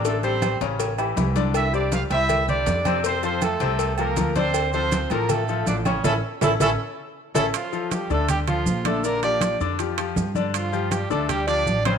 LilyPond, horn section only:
\new Staff \with { instrumentName = "Horn section" } { \time 4/4 \key d \minor \tempo 4 = 160 <a a'>8 <c' c''>4 r2 r8 | <e' e''>8 <d' d''>8 <f' f''>8 <e' e''>4 <d' d''>4. | <c' c''>8 <c' c''>8 <a a'>4. <bes bes'>4 <c' c''>8~ | <c' c''>8 <c' c''>4 <bes bes'>8 <a a'>4 <d' d''>8 <cis' cis''>8 |
<cis' e' a'>8 r8 <cis' e' a'>8 <cis' e' a'>8 r4. <cis' e' a'>8 | <f f'>4 <g g'>8 <a a'>8 <g g'>8 <f f'>4 <a a'>8 | <bes bes'>8 <d' d''>4 r2 r8 | <f f'>4 <g g'>8 <a a'>8 <g g'>8 <d' d''>4 <c' c''>8 | }